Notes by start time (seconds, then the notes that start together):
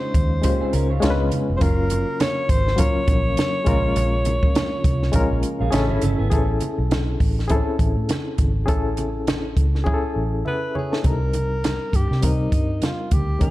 Already playing: C#3 G#3 C#4 D#4 F4 C5 C#5
0.14 D#2, kick, closed hi-hat, muted conga
0.42 G#3 A#3 C#4 F4 G4 C5, kick, closed hi-hat, muted conga, low conga
0.61 C4 G#4, muted fingered electric bass stroke
0.73 C#2 C#4 A#4, closed hi-hat
0.90 F4 C#5
1.00 C#2 C#3 G#3 B3 C#4 F4 A#4, snare, closed hi-hat, high conga
1.10 B4
1.32 closed hi-hat, high conga
1.50 F1
1.57 F#3 C#4 C5
1.61 F#1 F#3 A#3 F4 A#4, kick, closed hi-hat, muted conga
1.90 closed hi-hat, muted conga
2.20 C#5, snare, closed hi-hat, high conga
2.49 G#1 C5, kick, closed hi-hat
2.67 snare
2.76 F#3 C#4 F4 A#4 C#5, kick, closed hi-hat, muted conga, low conga
2.96 muted fingered electric bass stroke
3.08 A#1, kick, closed hi-hat, low conga
3.37 snare, closed hi-hat, high conga
3.65 A#1 F3 G#3 C#4 F4 A#4, kick, closed hi-hat, high conga
3.96 A#1, closed hi-hat, muted conga
4.25 closed hi-hat, muted conga
4.43 kick
4.55 snare, closed hi-hat, high conga
4.84 C2, kick, closed hi-hat, muted conga
5.03 snare
5.12 A#1 G#3 C#4 F4 A#4, kick, closed hi-hat, muted conga, low conga
5.31 A#1
5.43 closed hi-hat
5.60 A#1 G#4 F5
5.71 A1 E3 A3 C#4 E4 F#4 G#4 A4 D#5, snare, closed hi-hat, high conga
5.90 G#1 E4 C#5
6.02 G1 C#4 A4, closed hi-hat, high conga
6.19 G#1 B3 G#4
6.30 A1 B3 E4 G#4 A4, kick, closed hi-hat, muted conga
6.38 C#4
6.60 closed hi-hat, muted conga
6.78 B1
6.91 snare, closed hi-hat, high conga
7.20 A1, kick, open hi-hat
7.39 snare
7.48 C4 E4 G#4 A4, kick, closed hi-hat, muted conga, low conga
7.55 C#4
7.79 A1, kick, closed hi-hat
7.97 A2
8.09 snare, closed hi-hat, high conga
8.38 G#1, kick, closed hi-hat, high conga
8.66 A1 C#4 E4 G#4 A4, kick, closed hi-hat, muted conga
8.97 closed hi-hat, muted conga
9.27 snare, closed hi-hat, high conga
9.57 C#2, kick, closed hi-hat
9.75 snare
9.84 C#4 E4 G#4, kick, muted conga, low conga
9.94 A4
10.16 A1
10.45 B4 E5, high conga
10.75 G#4 C#5, high conga
10.92 E4 A4, snare
11.03 C2 G3 C4 D#4 A#4, kick, closed hi-hat, muted conga
11.33 closed hi-hat, muted conga
11.64 snare, closed hi-hat, high conga
11.93 G2 G4, kick, closed hi-hat, muted conga
12.11 C3, snare
12.21 G3 C4 D#4 A#4, kick, closed hi-hat, muted conga, low conga
12.52 G2, kick, closed hi-hat
12.82 F4, snare, closed hi-hat, high conga
13.11 D2 G4, kick, closed hi-hat, high conga
13.39 D#2 G#3 C#4 D#4 G#4 A#4, kick, closed hi-hat, muted conga